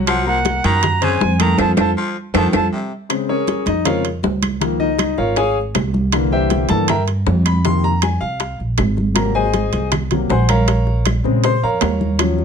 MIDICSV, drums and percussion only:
0, 0, Header, 1, 2, 480
1, 0, Start_track
1, 0, Key_signature, -5, "minor"
1, 0, Tempo, 378788
1, 95, Time_signature, 4, 2, 24, 8
1, 15773, End_track
2, 0, Start_track
2, 0, Title_t, "Drums"
2, 93, Note_on_c, 9, 65, 92
2, 98, Note_on_c, 9, 63, 40
2, 99, Note_on_c, 9, 60, 64
2, 104, Note_on_c, 9, 75, 74
2, 220, Note_off_c, 9, 65, 0
2, 224, Note_off_c, 9, 63, 0
2, 226, Note_off_c, 9, 60, 0
2, 230, Note_off_c, 9, 75, 0
2, 337, Note_on_c, 9, 63, 35
2, 342, Note_on_c, 9, 60, 38
2, 464, Note_off_c, 9, 63, 0
2, 469, Note_off_c, 9, 60, 0
2, 569, Note_on_c, 9, 63, 99
2, 577, Note_on_c, 9, 65, 69
2, 580, Note_on_c, 9, 60, 61
2, 696, Note_off_c, 9, 63, 0
2, 704, Note_off_c, 9, 65, 0
2, 707, Note_off_c, 9, 60, 0
2, 815, Note_on_c, 9, 65, 63
2, 817, Note_on_c, 9, 63, 101
2, 942, Note_off_c, 9, 65, 0
2, 944, Note_off_c, 9, 63, 0
2, 1049, Note_on_c, 9, 65, 84
2, 1057, Note_on_c, 9, 63, 36
2, 1057, Note_on_c, 9, 64, 86
2, 1062, Note_on_c, 9, 60, 67
2, 1064, Note_on_c, 9, 75, 62
2, 1176, Note_off_c, 9, 65, 0
2, 1183, Note_off_c, 9, 63, 0
2, 1183, Note_off_c, 9, 64, 0
2, 1189, Note_off_c, 9, 60, 0
2, 1191, Note_off_c, 9, 75, 0
2, 1291, Note_on_c, 9, 65, 66
2, 1296, Note_on_c, 9, 60, 40
2, 1296, Note_on_c, 9, 63, 34
2, 1296, Note_on_c, 9, 64, 71
2, 1418, Note_off_c, 9, 65, 0
2, 1423, Note_off_c, 9, 60, 0
2, 1423, Note_off_c, 9, 63, 0
2, 1423, Note_off_c, 9, 64, 0
2, 1530, Note_on_c, 9, 63, 84
2, 1538, Note_on_c, 9, 60, 74
2, 1538, Note_on_c, 9, 61, 86
2, 1656, Note_off_c, 9, 63, 0
2, 1665, Note_off_c, 9, 60, 0
2, 1665, Note_off_c, 9, 61, 0
2, 1771, Note_on_c, 9, 65, 94
2, 1772, Note_on_c, 9, 60, 36
2, 1772, Note_on_c, 9, 63, 88
2, 1778, Note_on_c, 9, 75, 63
2, 1897, Note_off_c, 9, 65, 0
2, 1898, Note_off_c, 9, 63, 0
2, 1899, Note_off_c, 9, 60, 0
2, 1905, Note_off_c, 9, 75, 0
2, 2000, Note_on_c, 9, 63, 111
2, 2010, Note_on_c, 9, 65, 100
2, 2013, Note_on_c, 9, 61, 87
2, 2021, Note_on_c, 9, 75, 98
2, 2127, Note_off_c, 9, 63, 0
2, 2136, Note_off_c, 9, 65, 0
2, 2140, Note_off_c, 9, 61, 0
2, 2148, Note_off_c, 9, 75, 0
2, 2241, Note_on_c, 9, 63, 101
2, 2244, Note_on_c, 9, 61, 110
2, 2250, Note_on_c, 9, 65, 101
2, 2262, Note_on_c, 9, 75, 88
2, 2368, Note_off_c, 9, 63, 0
2, 2371, Note_off_c, 9, 61, 0
2, 2377, Note_off_c, 9, 65, 0
2, 2389, Note_off_c, 9, 75, 0
2, 2967, Note_on_c, 9, 63, 106
2, 2972, Note_on_c, 9, 65, 100
2, 2973, Note_on_c, 9, 75, 108
2, 2974, Note_on_c, 9, 61, 107
2, 3094, Note_off_c, 9, 63, 0
2, 3099, Note_off_c, 9, 65, 0
2, 3100, Note_off_c, 9, 75, 0
2, 3101, Note_off_c, 9, 61, 0
2, 3207, Note_on_c, 9, 61, 99
2, 3211, Note_on_c, 9, 63, 111
2, 3211, Note_on_c, 9, 65, 94
2, 3223, Note_on_c, 9, 75, 105
2, 3334, Note_off_c, 9, 61, 0
2, 3337, Note_off_c, 9, 65, 0
2, 3338, Note_off_c, 9, 63, 0
2, 3349, Note_off_c, 9, 75, 0
2, 3927, Note_on_c, 9, 60, 67
2, 3927, Note_on_c, 9, 63, 37
2, 3930, Note_on_c, 9, 65, 92
2, 3938, Note_on_c, 9, 75, 68
2, 4053, Note_off_c, 9, 63, 0
2, 4054, Note_off_c, 9, 60, 0
2, 4057, Note_off_c, 9, 65, 0
2, 4065, Note_off_c, 9, 75, 0
2, 4169, Note_on_c, 9, 63, 34
2, 4182, Note_on_c, 9, 60, 36
2, 4295, Note_off_c, 9, 63, 0
2, 4308, Note_off_c, 9, 60, 0
2, 4401, Note_on_c, 9, 63, 88
2, 4409, Note_on_c, 9, 65, 66
2, 4414, Note_on_c, 9, 60, 63
2, 4528, Note_off_c, 9, 63, 0
2, 4536, Note_off_c, 9, 65, 0
2, 4541, Note_off_c, 9, 60, 0
2, 4637, Note_on_c, 9, 63, 98
2, 4647, Note_on_c, 9, 65, 65
2, 4764, Note_off_c, 9, 63, 0
2, 4774, Note_off_c, 9, 65, 0
2, 4880, Note_on_c, 9, 63, 35
2, 4880, Note_on_c, 9, 64, 81
2, 4884, Note_on_c, 9, 65, 94
2, 4896, Note_on_c, 9, 75, 61
2, 4903, Note_on_c, 9, 60, 66
2, 5007, Note_off_c, 9, 63, 0
2, 5007, Note_off_c, 9, 64, 0
2, 5011, Note_off_c, 9, 65, 0
2, 5023, Note_off_c, 9, 75, 0
2, 5030, Note_off_c, 9, 60, 0
2, 5128, Note_on_c, 9, 63, 38
2, 5128, Note_on_c, 9, 65, 67
2, 5137, Note_on_c, 9, 60, 38
2, 5255, Note_off_c, 9, 63, 0
2, 5255, Note_off_c, 9, 65, 0
2, 5264, Note_off_c, 9, 60, 0
2, 5362, Note_on_c, 9, 63, 85
2, 5370, Note_on_c, 9, 66, 65
2, 5371, Note_on_c, 9, 60, 64
2, 5371, Note_on_c, 9, 61, 86
2, 5488, Note_off_c, 9, 63, 0
2, 5497, Note_off_c, 9, 66, 0
2, 5498, Note_off_c, 9, 60, 0
2, 5498, Note_off_c, 9, 61, 0
2, 5604, Note_on_c, 9, 63, 93
2, 5608, Note_on_c, 9, 65, 95
2, 5614, Note_on_c, 9, 60, 34
2, 5616, Note_on_c, 9, 75, 64
2, 5731, Note_off_c, 9, 63, 0
2, 5735, Note_off_c, 9, 65, 0
2, 5741, Note_off_c, 9, 60, 0
2, 5743, Note_off_c, 9, 75, 0
2, 5848, Note_on_c, 9, 65, 75
2, 5850, Note_on_c, 9, 60, 66
2, 5851, Note_on_c, 9, 63, 35
2, 5975, Note_off_c, 9, 65, 0
2, 5977, Note_off_c, 9, 60, 0
2, 5977, Note_off_c, 9, 63, 0
2, 6080, Note_on_c, 9, 60, 36
2, 6085, Note_on_c, 9, 63, 31
2, 6207, Note_off_c, 9, 60, 0
2, 6212, Note_off_c, 9, 63, 0
2, 6317, Note_on_c, 9, 60, 61
2, 6322, Note_on_c, 9, 63, 95
2, 6325, Note_on_c, 9, 65, 95
2, 6339, Note_on_c, 9, 75, 64
2, 6444, Note_off_c, 9, 60, 0
2, 6449, Note_off_c, 9, 63, 0
2, 6452, Note_off_c, 9, 65, 0
2, 6465, Note_off_c, 9, 75, 0
2, 6560, Note_on_c, 9, 60, 38
2, 6570, Note_on_c, 9, 63, 41
2, 6687, Note_off_c, 9, 60, 0
2, 6696, Note_off_c, 9, 63, 0
2, 6797, Note_on_c, 9, 65, 64
2, 6803, Note_on_c, 9, 60, 73
2, 6806, Note_on_c, 9, 63, 34
2, 6924, Note_off_c, 9, 65, 0
2, 6930, Note_off_c, 9, 60, 0
2, 6933, Note_off_c, 9, 63, 0
2, 7044, Note_on_c, 9, 63, 36
2, 7171, Note_off_c, 9, 63, 0
2, 7285, Note_on_c, 9, 65, 87
2, 7285, Note_on_c, 9, 66, 62
2, 7286, Note_on_c, 9, 63, 77
2, 7288, Note_on_c, 9, 60, 61
2, 7288, Note_on_c, 9, 61, 82
2, 7290, Note_on_c, 9, 75, 61
2, 7412, Note_off_c, 9, 63, 0
2, 7412, Note_off_c, 9, 65, 0
2, 7412, Note_off_c, 9, 66, 0
2, 7414, Note_off_c, 9, 60, 0
2, 7414, Note_off_c, 9, 61, 0
2, 7417, Note_off_c, 9, 75, 0
2, 7527, Note_on_c, 9, 60, 38
2, 7532, Note_on_c, 9, 63, 84
2, 7654, Note_off_c, 9, 60, 0
2, 7659, Note_off_c, 9, 63, 0
2, 7761, Note_on_c, 9, 65, 99
2, 7770, Note_on_c, 9, 60, 69
2, 7777, Note_on_c, 9, 75, 68
2, 7888, Note_off_c, 9, 65, 0
2, 7897, Note_off_c, 9, 60, 0
2, 7904, Note_off_c, 9, 75, 0
2, 8007, Note_on_c, 9, 60, 33
2, 8008, Note_on_c, 9, 63, 36
2, 8134, Note_off_c, 9, 60, 0
2, 8134, Note_off_c, 9, 63, 0
2, 8240, Note_on_c, 9, 65, 65
2, 8247, Note_on_c, 9, 63, 83
2, 8252, Note_on_c, 9, 60, 58
2, 8367, Note_off_c, 9, 65, 0
2, 8373, Note_off_c, 9, 63, 0
2, 8379, Note_off_c, 9, 60, 0
2, 8473, Note_on_c, 9, 65, 64
2, 8480, Note_on_c, 9, 63, 110
2, 8600, Note_off_c, 9, 65, 0
2, 8607, Note_off_c, 9, 63, 0
2, 8718, Note_on_c, 9, 65, 95
2, 8733, Note_on_c, 9, 63, 38
2, 8733, Note_on_c, 9, 64, 86
2, 8734, Note_on_c, 9, 75, 66
2, 8737, Note_on_c, 9, 60, 70
2, 8845, Note_off_c, 9, 65, 0
2, 8860, Note_off_c, 9, 63, 0
2, 8860, Note_off_c, 9, 64, 0
2, 8861, Note_off_c, 9, 75, 0
2, 8864, Note_off_c, 9, 60, 0
2, 8967, Note_on_c, 9, 65, 57
2, 8975, Note_on_c, 9, 60, 35
2, 8975, Note_on_c, 9, 63, 36
2, 9093, Note_off_c, 9, 65, 0
2, 9102, Note_off_c, 9, 60, 0
2, 9102, Note_off_c, 9, 63, 0
2, 9207, Note_on_c, 9, 60, 66
2, 9207, Note_on_c, 9, 61, 90
2, 9207, Note_on_c, 9, 66, 57
2, 9213, Note_on_c, 9, 63, 77
2, 9334, Note_off_c, 9, 60, 0
2, 9334, Note_off_c, 9, 61, 0
2, 9334, Note_off_c, 9, 66, 0
2, 9340, Note_off_c, 9, 63, 0
2, 9447, Note_on_c, 9, 75, 61
2, 9450, Note_on_c, 9, 65, 97
2, 9451, Note_on_c, 9, 63, 79
2, 9452, Note_on_c, 9, 60, 34
2, 9573, Note_off_c, 9, 75, 0
2, 9577, Note_off_c, 9, 65, 0
2, 9578, Note_off_c, 9, 63, 0
2, 9579, Note_off_c, 9, 60, 0
2, 9690, Note_on_c, 9, 65, 68
2, 9697, Note_on_c, 9, 60, 76
2, 9817, Note_off_c, 9, 65, 0
2, 9824, Note_off_c, 9, 60, 0
2, 9930, Note_on_c, 9, 63, 37
2, 9939, Note_on_c, 9, 60, 33
2, 10057, Note_off_c, 9, 63, 0
2, 10065, Note_off_c, 9, 60, 0
2, 10163, Note_on_c, 9, 65, 98
2, 10169, Note_on_c, 9, 75, 71
2, 10174, Note_on_c, 9, 63, 93
2, 10176, Note_on_c, 9, 60, 59
2, 10289, Note_off_c, 9, 65, 0
2, 10296, Note_off_c, 9, 75, 0
2, 10301, Note_off_c, 9, 63, 0
2, 10303, Note_off_c, 9, 60, 0
2, 10409, Note_on_c, 9, 60, 37
2, 10413, Note_on_c, 9, 63, 36
2, 10536, Note_off_c, 9, 60, 0
2, 10540, Note_off_c, 9, 63, 0
2, 10642, Note_on_c, 9, 65, 64
2, 10649, Note_on_c, 9, 60, 70
2, 10654, Note_on_c, 9, 63, 34
2, 10769, Note_off_c, 9, 65, 0
2, 10776, Note_off_c, 9, 60, 0
2, 10781, Note_off_c, 9, 63, 0
2, 10899, Note_on_c, 9, 63, 34
2, 11026, Note_off_c, 9, 63, 0
2, 11122, Note_on_c, 9, 65, 79
2, 11122, Note_on_c, 9, 66, 55
2, 11128, Note_on_c, 9, 60, 65
2, 11128, Note_on_c, 9, 61, 77
2, 11129, Note_on_c, 9, 63, 83
2, 11130, Note_on_c, 9, 75, 69
2, 11249, Note_off_c, 9, 65, 0
2, 11249, Note_off_c, 9, 66, 0
2, 11255, Note_off_c, 9, 60, 0
2, 11255, Note_off_c, 9, 61, 0
2, 11256, Note_off_c, 9, 63, 0
2, 11257, Note_off_c, 9, 75, 0
2, 11367, Note_on_c, 9, 60, 35
2, 11378, Note_on_c, 9, 63, 87
2, 11494, Note_off_c, 9, 60, 0
2, 11505, Note_off_c, 9, 63, 0
2, 11602, Note_on_c, 9, 65, 103
2, 11606, Note_on_c, 9, 75, 66
2, 11608, Note_on_c, 9, 63, 37
2, 11611, Note_on_c, 9, 60, 64
2, 11729, Note_off_c, 9, 65, 0
2, 11732, Note_off_c, 9, 75, 0
2, 11735, Note_off_c, 9, 63, 0
2, 11737, Note_off_c, 9, 60, 0
2, 11843, Note_on_c, 9, 60, 33
2, 11844, Note_on_c, 9, 63, 39
2, 11969, Note_off_c, 9, 60, 0
2, 11971, Note_off_c, 9, 63, 0
2, 12084, Note_on_c, 9, 65, 67
2, 12085, Note_on_c, 9, 60, 52
2, 12089, Note_on_c, 9, 63, 93
2, 12210, Note_off_c, 9, 65, 0
2, 12212, Note_off_c, 9, 60, 0
2, 12216, Note_off_c, 9, 63, 0
2, 12325, Note_on_c, 9, 65, 63
2, 12333, Note_on_c, 9, 63, 98
2, 12452, Note_off_c, 9, 65, 0
2, 12459, Note_off_c, 9, 63, 0
2, 12567, Note_on_c, 9, 65, 93
2, 12570, Note_on_c, 9, 60, 72
2, 12575, Note_on_c, 9, 63, 36
2, 12575, Note_on_c, 9, 64, 86
2, 12576, Note_on_c, 9, 75, 65
2, 12694, Note_off_c, 9, 65, 0
2, 12697, Note_off_c, 9, 60, 0
2, 12702, Note_off_c, 9, 63, 0
2, 12702, Note_off_c, 9, 64, 0
2, 12703, Note_off_c, 9, 75, 0
2, 12809, Note_on_c, 9, 65, 61
2, 12815, Note_on_c, 9, 60, 32
2, 12818, Note_on_c, 9, 63, 38
2, 12818, Note_on_c, 9, 64, 84
2, 12935, Note_off_c, 9, 65, 0
2, 12942, Note_off_c, 9, 60, 0
2, 12945, Note_off_c, 9, 63, 0
2, 12945, Note_off_c, 9, 64, 0
2, 13047, Note_on_c, 9, 66, 61
2, 13055, Note_on_c, 9, 60, 67
2, 13055, Note_on_c, 9, 61, 86
2, 13064, Note_on_c, 9, 63, 76
2, 13173, Note_off_c, 9, 66, 0
2, 13182, Note_off_c, 9, 60, 0
2, 13182, Note_off_c, 9, 61, 0
2, 13190, Note_off_c, 9, 63, 0
2, 13290, Note_on_c, 9, 60, 34
2, 13290, Note_on_c, 9, 65, 93
2, 13301, Note_on_c, 9, 75, 70
2, 13302, Note_on_c, 9, 63, 83
2, 13417, Note_off_c, 9, 60, 0
2, 13417, Note_off_c, 9, 65, 0
2, 13427, Note_off_c, 9, 75, 0
2, 13428, Note_off_c, 9, 63, 0
2, 13531, Note_on_c, 9, 65, 79
2, 13536, Note_on_c, 9, 60, 71
2, 13543, Note_on_c, 9, 63, 40
2, 13657, Note_off_c, 9, 65, 0
2, 13662, Note_off_c, 9, 60, 0
2, 13670, Note_off_c, 9, 63, 0
2, 13773, Note_on_c, 9, 60, 36
2, 13780, Note_on_c, 9, 63, 38
2, 13899, Note_off_c, 9, 60, 0
2, 13907, Note_off_c, 9, 63, 0
2, 14009, Note_on_c, 9, 65, 93
2, 14020, Note_on_c, 9, 63, 105
2, 14021, Note_on_c, 9, 60, 59
2, 14022, Note_on_c, 9, 75, 67
2, 14136, Note_off_c, 9, 65, 0
2, 14146, Note_off_c, 9, 63, 0
2, 14147, Note_off_c, 9, 60, 0
2, 14149, Note_off_c, 9, 75, 0
2, 14260, Note_on_c, 9, 60, 36
2, 14260, Note_on_c, 9, 63, 41
2, 14387, Note_off_c, 9, 60, 0
2, 14387, Note_off_c, 9, 63, 0
2, 14491, Note_on_c, 9, 65, 66
2, 14500, Note_on_c, 9, 60, 67
2, 14500, Note_on_c, 9, 63, 38
2, 14618, Note_off_c, 9, 65, 0
2, 14626, Note_off_c, 9, 63, 0
2, 14627, Note_off_c, 9, 60, 0
2, 14731, Note_on_c, 9, 63, 37
2, 14858, Note_off_c, 9, 63, 0
2, 14966, Note_on_c, 9, 65, 81
2, 14966, Note_on_c, 9, 66, 71
2, 14973, Note_on_c, 9, 63, 79
2, 14973, Note_on_c, 9, 75, 61
2, 14978, Note_on_c, 9, 60, 69
2, 14978, Note_on_c, 9, 61, 88
2, 15092, Note_off_c, 9, 65, 0
2, 15092, Note_off_c, 9, 66, 0
2, 15100, Note_off_c, 9, 63, 0
2, 15100, Note_off_c, 9, 75, 0
2, 15105, Note_off_c, 9, 60, 0
2, 15105, Note_off_c, 9, 61, 0
2, 15217, Note_on_c, 9, 63, 90
2, 15219, Note_on_c, 9, 60, 37
2, 15344, Note_off_c, 9, 63, 0
2, 15346, Note_off_c, 9, 60, 0
2, 15447, Note_on_c, 9, 75, 69
2, 15448, Note_on_c, 9, 60, 68
2, 15450, Note_on_c, 9, 65, 95
2, 15574, Note_off_c, 9, 75, 0
2, 15575, Note_off_c, 9, 60, 0
2, 15576, Note_off_c, 9, 65, 0
2, 15693, Note_on_c, 9, 60, 38
2, 15695, Note_on_c, 9, 63, 34
2, 15773, Note_off_c, 9, 60, 0
2, 15773, Note_off_c, 9, 63, 0
2, 15773, End_track
0, 0, End_of_file